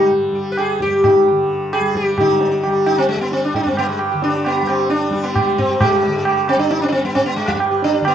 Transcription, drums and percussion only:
0, 0, Header, 1, 2, 480
1, 0, Start_track
1, 0, Tempo, 457666
1, 360, Time_signature, 4, 2, 24, 8
1, 4197, Tempo, 449775
1, 8621, End_track
2, 0, Start_track
2, 0, Title_t, "Tabla"
2, 602, Note_on_c, 9, 60, 66
2, 707, Note_off_c, 9, 60, 0
2, 843, Note_on_c, 9, 37, 74
2, 948, Note_off_c, 9, 37, 0
2, 1090, Note_on_c, 9, 60, 96
2, 1090, Note_on_c, 9, 64, 74
2, 1195, Note_off_c, 9, 60, 0
2, 1195, Note_off_c, 9, 64, 0
2, 1814, Note_on_c, 9, 60, 73
2, 1919, Note_off_c, 9, 60, 0
2, 2048, Note_on_c, 9, 37, 68
2, 2153, Note_off_c, 9, 37, 0
2, 2283, Note_on_c, 9, 60, 98
2, 2283, Note_on_c, 9, 64, 92
2, 2388, Note_off_c, 9, 60, 0
2, 2388, Note_off_c, 9, 64, 0
2, 2526, Note_on_c, 9, 62, 87
2, 2631, Note_off_c, 9, 62, 0
2, 2765, Note_on_c, 9, 60, 80
2, 2870, Note_off_c, 9, 60, 0
2, 3004, Note_on_c, 9, 60, 68
2, 3109, Note_off_c, 9, 60, 0
2, 3245, Note_on_c, 9, 62, 81
2, 3350, Note_off_c, 9, 62, 0
2, 3479, Note_on_c, 9, 62, 65
2, 3584, Note_off_c, 9, 62, 0
2, 3717, Note_on_c, 9, 63, 86
2, 3717, Note_on_c, 9, 64, 75
2, 3822, Note_off_c, 9, 63, 0
2, 3822, Note_off_c, 9, 64, 0
2, 3956, Note_on_c, 9, 60, 68
2, 4060, Note_off_c, 9, 60, 0
2, 4186, Note_on_c, 9, 60, 79
2, 4293, Note_off_c, 9, 60, 0
2, 4434, Note_on_c, 9, 62, 69
2, 4541, Note_off_c, 9, 62, 0
2, 4671, Note_on_c, 9, 60, 93
2, 4777, Note_off_c, 9, 60, 0
2, 4914, Note_on_c, 9, 60, 68
2, 5021, Note_off_c, 9, 60, 0
2, 5152, Note_on_c, 9, 62, 75
2, 5258, Note_off_c, 9, 62, 0
2, 5401, Note_on_c, 9, 62, 56
2, 5508, Note_off_c, 9, 62, 0
2, 5642, Note_on_c, 9, 60, 76
2, 5642, Note_on_c, 9, 64, 73
2, 5748, Note_off_c, 9, 60, 0
2, 5748, Note_off_c, 9, 64, 0
2, 5887, Note_on_c, 9, 64, 57
2, 5994, Note_off_c, 9, 64, 0
2, 6122, Note_on_c, 9, 60, 101
2, 6122, Note_on_c, 9, 64, 104
2, 6229, Note_off_c, 9, 60, 0
2, 6229, Note_off_c, 9, 64, 0
2, 6360, Note_on_c, 9, 62, 92
2, 6467, Note_off_c, 9, 62, 0
2, 6599, Note_on_c, 9, 60, 95
2, 6705, Note_off_c, 9, 60, 0
2, 6841, Note_on_c, 9, 60, 74
2, 6948, Note_off_c, 9, 60, 0
2, 7084, Note_on_c, 9, 62, 85
2, 7190, Note_off_c, 9, 62, 0
2, 7324, Note_on_c, 9, 62, 62
2, 7431, Note_off_c, 9, 62, 0
2, 7563, Note_on_c, 9, 63, 78
2, 7563, Note_on_c, 9, 64, 68
2, 7670, Note_off_c, 9, 63, 0
2, 7670, Note_off_c, 9, 64, 0
2, 7799, Note_on_c, 9, 60, 62
2, 7905, Note_off_c, 9, 60, 0
2, 7913, Note_on_c, 9, 37, 63
2, 8020, Note_off_c, 9, 37, 0
2, 8039, Note_on_c, 9, 60, 79
2, 8146, Note_off_c, 9, 60, 0
2, 8276, Note_on_c, 9, 62, 66
2, 8383, Note_off_c, 9, 62, 0
2, 8516, Note_on_c, 9, 60, 98
2, 8621, Note_off_c, 9, 60, 0
2, 8621, End_track
0, 0, End_of_file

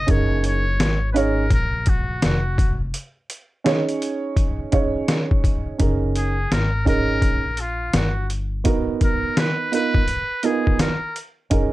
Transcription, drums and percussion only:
0, 0, Header, 1, 2, 480
1, 0, Start_track
1, 0, Key_signature, 6, "major"
1, 0, Tempo, 714286
1, 56, Time_signature, 4, 2, 24, 8
1, 7881, End_track
2, 0, Start_track
2, 0, Title_t, "Drums"
2, 54, Note_on_c, 9, 42, 94
2, 57, Note_on_c, 9, 36, 124
2, 121, Note_off_c, 9, 42, 0
2, 124, Note_off_c, 9, 36, 0
2, 295, Note_on_c, 9, 42, 78
2, 362, Note_off_c, 9, 42, 0
2, 538, Note_on_c, 9, 38, 112
2, 538, Note_on_c, 9, 42, 91
2, 605, Note_off_c, 9, 38, 0
2, 605, Note_off_c, 9, 42, 0
2, 779, Note_on_c, 9, 42, 70
2, 846, Note_off_c, 9, 42, 0
2, 1011, Note_on_c, 9, 36, 93
2, 1012, Note_on_c, 9, 42, 83
2, 1078, Note_off_c, 9, 36, 0
2, 1079, Note_off_c, 9, 42, 0
2, 1248, Note_on_c, 9, 42, 71
2, 1257, Note_on_c, 9, 36, 96
2, 1316, Note_off_c, 9, 42, 0
2, 1324, Note_off_c, 9, 36, 0
2, 1494, Note_on_c, 9, 42, 94
2, 1495, Note_on_c, 9, 38, 123
2, 1561, Note_off_c, 9, 42, 0
2, 1562, Note_off_c, 9, 38, 0
2, 1735, Note_on_c, 9, 36, 90
2, 1740, Note_on_c, 9, 42, 73
2, 1802, Note_off_c, 9, 36, 0
2, 1807, Note_off_c, 9, 42, 0
2, 1975, Note_on_c, 9, 42, 101
2, 2043, Note_off_c, 9, 42, 0
2, 2216, Note_on_c, 9, 42, 82
2, 2283, Note_off_c, 9, 42, 0
2, 2459, Note_on_c, 9, 38, 118
2, 2459, Note_on_c, 9, 42, 95
2, 2526, Note_off_c, 9, 38, 0
2, 2526, Note_off_c, 9, 42, 0
2, 2611, Note_on_c, 9, 42, 55
2, 2678, Note_off_c, 9, 42, 0
2, 2701, Note_on_c, 9, 42, 79
2, 2769, Note_off_c, 9, 42, 0
2, 2934, Note_on_c, 9, 36, 104
2, 2936, Note_on_c, 9, 42, 85
2, 3001, Note_off_c, 9, 36, 0
2, 3003, Note_off_c, 9, 42, 0
2, 3173, Note_on_c, 9, 42, 66
2, 3179, Note_on_c, 9, 36, 99
2, 3240, Note_off_c, 9, 42, 0
2, 3246, Note_off_c, 9, 36, 0
2, 3416, Note_on_c, 9, 42, 100
2, 3417, Note_on_c, 9, 38, 126
2, 3483, Note_off_c, 9, 42, 0
2, 3484, Note_off_c, 9, 38, 0
2, 3570, Note_on_c, 9, 36, 94
2, 3637, Note_off_c, 9, 36, 0
2, 3655, Note_on_c, 9, 36, 88
2, 3660, Note_on_c, 9, 42, 74
2, 3723, Note_off_c, 9, 36, 0
2, 3727, Note_off_c, 9, 42, 0
2, 3895, Note_on_c, 9, 42, 105
2, 3898, Note_on_c, 9, 36, 112
2, 3962, Note_off_c, 9, 42, 0
2, 3965, Note_off_c, 9, 36, 0
2, 4136, Note_on_c, 9, 42, 80
2, 4204, Note_off_c, 9, 42, 0
2, 4379, Note_on_c, 9, 38, 102
2, 4380, Note_on_c, 9, 42, 86
2, 4447, Note_off_c, 9, 38, 0
2, 4447, Note_off_c, 9, 42, 0
2, 4613, Note_on_c, 9, 36, 84
2, 4618, Note_on_c, 9, 42, 74
2, 4680, Note_off_c, 9, 36, 0
2, 4686, Note_off_c, 9, 42, 0
2, 4851, Note_on_c, 9, 36, 88
2, 4853, Note_on_c, 9, 42, 77
2, 4918, Note_off_c, 9, 36, 0
2, 4920, Note_off_c, 9, 42, 0
2, 5088, Note_on_c, 9, 42, 67
2, 5155, Note_off_c, 9, 42, 0
2, 5332, Note_on_c, 9, 42, 106
2, 5333, Note_on_c, 9, 38, 116
2, 5399, Note_off_c, 9, 42, 0
2, 5400, Note_off_c, 9, 38, 0
2, 5577, Note_on_c, 9, 42, 71
2, 5644, Note_off_c, 9, 42, 0
2, 5812, Note_on_c, 9, 42, 100
2, 5816, Note_on_c, 9, 36, 112
2, 5879, Note_off_c, 9, 42, 0
2, 5883, Note_off_c, 9, 36, 0
2, 6054, Note_on_c, 9, 42, 74
2, 6056, Note_on_c, 9, 36, 93
2, 6121, Note_off_c, 9, 42, 0
2, 6123, Note_off_c, 9, 36, 0
2, 6297, Note_on_c, 9, 38, 114
2, 6297, Note_on_c, 9, 42, 86
2, 6364, Note_off_c, 9, 38, 0
2, 6364, Note_off_c, 9, 42, 0
2, 6538, Note_on_c, 9, 42, 76
2, 6605, Note_off_c, 9, 42, 0
2, 6683, Note_on_c, 9, 36, 93
2, 6750, Note_off_c, 9, 36, 0
2, 6772, Note_on_c, 9, 42, 82
2, 6839, Note_off_c, 9, 42, 0
2, 7008, Note_on_c, 9, 42, 66
2, 7076, Note_off_c, 9, 42, 0
2, 7170, Note_on_c, 9, 36, 77
2, 7237, Note_off_c, 9, 36, 0
2, 7253, Note_on_c, 9, 42, 105
2, 7254, Note_on_c, 9, 38, 114
2, 7320, Note_off_c, 9, 42, 0
2, 7321, Note_off_c, 9, 38, 0
2, 7499, Note_on_c, 9, 42, 66
2, 7566, Note_off_c, 9, 42, 0
2, 7733, Note_on_c, 9, 42, 101
2, 7737, Note_on_c, 9, 36, 127
2, 7801, Note_off_c, 9, 42, 0
2, 7804, Note_off_c, 9, 36, 0
2, 7881, End_track
0, 0, End_of_file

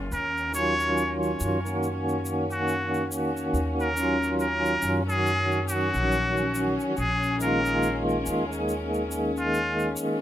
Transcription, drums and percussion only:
0, 0, Header, 1, 2, 480
1, 0, Start_track
1, 0, Key_signature, -6, "minor"
1, 0, Tempo, 857143
1, 63, Time_signature, 4, 2, 24, 8
1, 5720, End_track
2, 0, Start_track
2, 0, Title_t, "Drums"
2, 67, Note_on_c, 9, 82, 52
2, 123, Note_off_c, 9, 82, 0
2, 209, Note_on_c, 9, 82, 26
2, 265, Note_off_c, 9, 82, 0
2, 302, Note_on_c, 9, 82, 98
2, 358, Note_off_c, 9, 82, 0
2, 446, Note_on_c, 9, 82, 34
2, 502, Note_off_c, 9, 82, 0
2, 546, Note_on_c, 9, 82, 52
2, 602, Note_off_c, 9, 82, 0
2, 688, Note_on_c, 9, 82, 27
2, 744, Note_off_c, 9, 82, 0
2, 785, Note_on_c, 9, 82, 93
2, 841, Note_off_c, 9, 82, 0
2, 930, Note_on_c, 9, 82, 38
2, 986, Note_off_c, 9, 82, 0
2, 1025, Note_on_c, 9, 82, 47
2, 1081, Note_off_c, 9, 82, 0
2, 1169, Note_on_c, 9, 82, 26
2, 1225, Note_off_c, 9, 82, 0
2, 1262, Note_on_c, 9, 82, 82
2, 1318, Note_off_c, 9, 82, 0
2, 1404, Note_on_c, 9, 82, 37
2, 1460, Note_off_c, 9, 82, 0
2, 1501, Note_on_c, 9, 82, 47
2, 1557, Note_off_c, 9, 82, 0
2, 1647, Note_on_c, 9, 82, 29
2, 1703, Note_off_c, 9, 82, 0
2, 1745, Note_on_c, 9, 82, 101
2, 1801, Note_off_c, 9, 82, 0
2, 1887, Note_on_c, 9, 82, 47
2, 1943, Note_off_c, 9, 82, 0
2, 1985, Note_on_c, 9, 82, 46
2, 2041, Note_off_c, 9, 82, 0
2, 2127, Note_on_c, 9, 82, 22
2, 2183, Note_off_c, 9, 82, 0
2, 2222, Note_on_c, 9, 82, 94
2, 2278, Note_off_c, 9, 82, 0
2, 2369, Note_on_c, 9, 82, 35
2, 2425, Note_off_c, 9, 82, 0
2, 2461, Note_on_c, 9, 82, 52
2, 2517, Note_off_c, 9, 82, 0
2, 2607, Note_on_c, 9, 82, 28
2, 2663, Note_off_c, 9, 82, 0
2, 2700, Note_on_c, 9, 82, 89
2, 2756, Note_off_c, 9, 82, 0
2, 2851, Note_on_c, 9, 82, 36
2, 2907, Note_off_c, 9, 82, 0
2, 2949, Note_on_c, 9, 82, 42
2, 3005, Note_off_c, 9, 82, 0
2, 3090, Note_on_c, 9, 82, 25
2, 3146, Note_off_c, 9, 82, 0
2, 3183, Note_on_c, 9, 82, 96
2, 3239, Note_off_c, 9, 82, 0
2, 3327, Note_on_c, 9, 82, 33
2, 3383, Note_off_c, 9, 82, 0
2, 3427, Note_on_c, 9, 82, 48
2, 3483, Note_off_c, 9, 82, 0
2, 3567, Note_on_c, 9, 82, 27
2, 3623, Note_off_c, 9, 82, 0
2, 3665, Note_on_c, 9, 82, 84
2, 3721, Note_off_c, 9, 82, 0
2, 3808, Note_on_c, 9, 82, 36
2, 3864, Note_off_c, 9, 82, 0
2, 3902, Note_on_c, 9, 82, 41
2, 3958, Note_off_c, 9, 82, 0
2, 4050, Note_on_c, 9, 82, 24
2, 4106, Note_off_c, 9, 82, 0
2, 4147, Note_on_c, 9, 82, 86
2, 4203, Note_off_c, 9, 82, 0
2, 4287, Note_on_c, 9, 82, 40
2, 4343, Note_off_c, 9, 82, 0
2, 4384, Note_on_c, 9, 82, 49
2, 4440, Note_off_c, 9, 82, 0
2, 4531, Note_on_c, 9, 82, 24
2, 4587, Note_off_c, 9, 82, 0
2, 4626, Note_on_c, 9, 82, 90
2, 4682, Note_off_c, 9, 82, 0
2, 4773, Note_on_c, 9, 82, 36
2, 4829, Note_off_c, 9, 82, 0
2, 4865, Note_on_c, 9, 82, 47
2, 4921, Note_off_c, 9, 82, 0
2, 5006, Note_on_c, 9, 82, 25
2, 5062, Note_off_c, 9, 82, 0
2, 5103, Note_on_c, 9, 82, 81
2, 5159, Note_off_c, 9, 82, 0
2, 5246, Note_on_c, 9, 82, 34
2, 5302, Note_off_c, 9, 82, 0
2, 5343, Note_on_c, 9, 82, 45
2, 5399, Note_off_c, 9, 82, 0
2, 5485, Note_on_c, 9, 82, 27
2, 5541, Note_off_c, 9, 82, 0
2, 5580, Note_on_c, 9, 82, 96
2, 5636, Note_off_c, 9, 82, 0
2, 5720, End_track
0, 0, End_of_file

